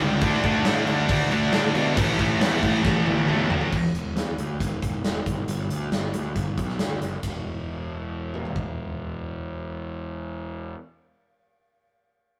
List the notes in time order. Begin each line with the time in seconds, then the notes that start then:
0.00 C#2 G2 D3 G3
0.21 D2 D3 A3 D4, kick, crash
0.32 snare
0.44 D2 D3 A3 D4, kick, crash
0.65 A2 D3 A3 D4, snare, crash
0.87 D2 D3 A3 D4, crash
1.09 D2 D3 A3 D4, kick, crash
1.31 D2 D3 A3 D4, crash
1.53 A2 D3 A3 D4, snare, crash
1.75 B2 D3 A3 D4, crash
1.97 A1 A2 E3 A3, kick, crash
2.19 A1 A2 E3 A3, kick, crash
2.41 E2 A2 E3 A3, snare, crash
2.63 A1 A2 E3 A3, kick, crash
2.74 snare
2.84 A1 A2 E3 A3, kick, snare
3.06 A1 A2 E3 A3, high tom
3.18 high tom
3.28 E2 A2 E3 A3, mid tom
3.50 D2 A2 E3 A3, floor tom
3.61 floor tom
3.72 E1, kick, crash
3.95 E1, closed hi-hat
4.16 E2, snare, closed hi-hat
4.38 D2, closed hi-hat
4.60 E1, kick, closed hi-hat
4.82 E1, kick, closed hi-hat
5.04 E1, snare, closed hi-hat
5.26 G1, kick, closed hi-hat
5.47 G1, closed hi-hat
5.70 D2, closed hi-hat
5.92 G1, snare, closed hi-hat
6.14 D2, closed hi-hat
6.36 G1, kick, closed hi-hat
6.58 B1, kick, closed hi-hat
6.69 snare
6.79 D2, snare, closed hi-hat
7.01 F#1, closed hi-hat
7.23 E1, kick, ride
8.34 mid tom
8.45 floor tom
8.56 kick